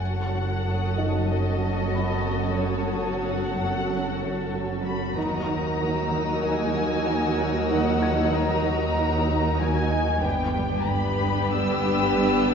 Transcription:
0.00 synth drone F#1, double bass section F#1, cello section F#2, viola section F#3 C#4, violin section F#4 A4 F#5 A5
0.32 cello section F#3
0.65 cello section F#2, violin section D#6
0.97 cello section F#2, felt piano D#4 D#5
1.29 cello section F#3, violin section D#5
1.61 cello section F#2
1.94 cello section F#2, felt piano B5
2.26 cello section F#3
2.59 cello section F#2, violin section C#5
2.92 cello section F#3
3.25 cello section F#2, violin section F#5
3.56 cello section F#2
3.78 violin section E6
3.89 cello section F#3
4.21 cello section F#2
4.53 cello section F#2
4.85 cello section F#3, violin section B5
5.16 cello section D#2 D#3, synth drone D#2, double bass section D#2, viola section F#3 D#4, violin section F#4 A#4 A#5 D#6 A#6
5.48 cello section D#4
5.80 cello section D#3, violin section E6
6.12 cello section D#3
6.45 cello section D#4, violin section G#5
6.77 cello section D#3
7.08 cello section D#3
7.40 cello section D#4
7.71 cello section D#3, violin section F#5
8.02 cello section D#4, felt piano G#6
8.33 cello section D#3, violin section A#5
8.65 cello section D#3
8.98 cello section D#4
9.29 cello section D#3
9.61 cello section D#3, violin section G#5
9.93 cello section D#4
10.23 double bass section G1, synth drone G1, cello section G2, viola section B3 D4, violin section G4 B4 G5
10.57 cello section G3
10.88 cello section G2, violin section B5
11.21 cello section G2
11.52 cello section G3, violin section E6
11.85 cello section G2
12.17 cello section G2
12.49 cello section G3

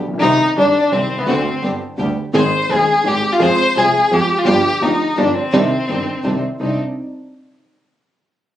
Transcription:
0.04 grand piano A1, double bass A#1
0.14 grand piano A#1
0.18 grand piano B1 D#3, double bass C2, string section C4 D#4, violin D#4
0.22 grand piano C2 C3 G3 C4 G4, string section G4
0.56 double bass G1, grand piano G1 G2 D#3 G3 C4 G4, string section C4 D#4 G4, violin D4
0.91 grand piano C2 C3 D#3 G3 C4 G4, double bass C2, string section C4 D#4 G4, violin C4
1.10 double bass C2
1.15 grand piano B1 C2, violin B3
1.22 grand piano C#2 D3
1.27 grand piano D2 A3 C4 F#4, double bass D2, string section C4 D4 F#4, violin C4
1.62 grand piano G1 G2 D3 G3 B3 G4, double bass G1, string section B3 D4 G4
1.97 grand piano D2 D3 G3 B3 G4, double bass D2, string section B3 D4 G4
2.33 double bass G#1, grand piano G#1 G#2 D#3 G#3 C4 G#4, string section C4 D#4 G#4, violin C5
2.69 grand piano D#1 D#2 D#3 G#3 C4 G#4, double bass D#2, string section C4 D#4 G#4, violin G#4
3.04 grand piano G#1 G#2 D#3 G#3 C4 G#4, double bass G#1, string section C4 D#4 G#4, violin G4
3.33 violin F4
3.39 grand piano F2 F3 G#3 C4 G#4, double bass F2, string section C4 F4 G#4, violin C5
3.75 double bass C2, grand piano C2 C3 F3 G#3 C4 G#4, string section C4 F4 G#4, violin G#4
4.10 grand piano F2 F3 G#3 C4 G#4, double bass F2, string section C4 F4 G#4, violin G4
4.39 violin F4
4.46 double bass G1, grand piano G1 G2 F3 B3 D4 G4, string section B3 F4 G4, violin G4
4.81 double bass D2, grand piano D2 D3 F3 B3 D4 G4, string section B3 F4 G4, violin D#4
5.17 double bass G1, grand piano G1 G2 F3 B3 D4 G4, string section B3 F4 G4, violin D4
5.35 violin C4
5.53 double bass C2, grand piano C2 C3 D#3 C4 D4 G4, string section C4 D4 D#4
5.88 double bass G1, grand piano G1 G2 D#3 C4 D4 G4, string section C4 D4 D#4
6.24 double bass C2, grand piano C2 C3 D#3 C4 D4 G4, string section C4 D4 D#4
6.60 double bass C2, grand piano C2 C4 D4 D#4, string section C4 D4 D#4

